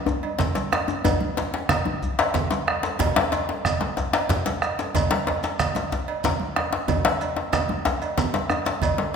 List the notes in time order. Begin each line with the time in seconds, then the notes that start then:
0.06 djembe slap, djembe tone, djembe bass, shekere
0.23 cowbell, djembe slap
0.39 bombo rim, bombo low, djembe slap, low conga, shekere
0.41 djembe slap
0.55 djembe slap, high conga, djembe tone, shekere
0.72 bombo rim, cowbell, djembe slap, shekere
0.88 djembe tone, shekere
1.04 bombo low, cowbell, djembe tone, low conga, djembe bass, shekere
1.21 high conga, djembe tone
1.37 djembe slap, high conga, shekere
1.54 djembe slap
1.69 bombo rim, bombo low, cowbell, djembe slap, low conga, shekere
1.85 bombo rim, high conga, djembe tone
2.02 djembe slap, djembe bass, shekere
2.19 cowbell, djembe slap, shekere
2.34 bombo rim, bombo low, djembe slap, low conga, shekere
2.51 djembe slap, high conga, djembe tone, shekere
2.67 bombo rim, cowbell
2.83 djembe slap, shekere
2.99 bombo low, cowbell, djembe slap, djembe bass, low conga, shekere
3.16 djembe slap, high conga, djembe tone
3.32 cowbell, djembe slap, high conga, shekere
3.49 djembe slap
3.65 bombo rim, bombo low, cowbell, low conga, shekere
3.81 bombo rim, djembe slap, high conga, djembe tone
3.97 djembe slap, djembe bass, shekere
4.13 cowbell, djembe slap, shekere
4.29 bombo rim, bombo low, djembe slap, low conga, shekere
4.46 djembe slap, djembe tone, high conga, shekere
4.62 bombo rim, cowbell, shekere
4.79 djembe slap, shekere
4.95 bombo low, cowbell, djembe slap, high conga, low conga, djembe bass, shekere
5.11 djembe slap, high conga
5.27 bombo rim, cowbell, djembe slap, high conga
5.43 bombo rim, djembe slap, high conga, shekere
5.59 bombo rim, bombo low, cowbell, low conga, shekere
5.75 bombo rim, djembe slap, high conga, djembe tone, shekere
5.92 djembe slap, djembe bass, shekere
6.08 cowbell, djembe slap
6.24 bombo low, djembe slap, low conga, shekere
6.40 bombo rim, djembe slap, high conga, djembe tone
6.56 bombo rim, cowbell, djembe slap
6.73 djembe slap
6.88 bombo low, cowbell, djembe tone, low conga, djembe bass, shekere
7.05 djembe slap, high conga, djembe tone
7.21 cowbell, high conga, shekere
7.36 djembe slap
7.53 bombo rim, bombo low, cowbell, djembe slap, low conga, shekere
7.69 bombo rim, high conga, djembe tone
7.85 djembe slap, djembe bass, shekere
8.02 cowbell, djembe slap, shekere
8.18 bombo low, djembe slap, low conga, shekere
8.34 djembe slap, high conga, djembe tone, shekere
8.50 bombo rim, cowbell, djembe tone, shekere
8.66 djembe slap, shekere
8.82 bombo low, cowbell, low conga, djembe bass, shekere
8.98 djembe slap, high conga, djembe tone